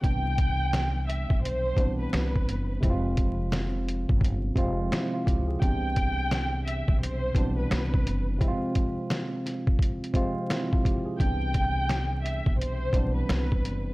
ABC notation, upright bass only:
X:1
M:4/4
L:1/16
Q:"Swing 16ths" 1/4=86
K:C
V:1 name="Upright bass" clef=bass
C,,6- C,, B,,,3 B,,,2 C,,2 ^F,,,2 | F,,,6- F,,, G,,,3 F,,,2 z2 _D,,2 | C,,6- C,, B,,,3 B,,,2 C,,2 ^F,,,2 | z16 |
C,,6- C,, B,,,3 B,,,2 C,,2 ^F,,,2 |]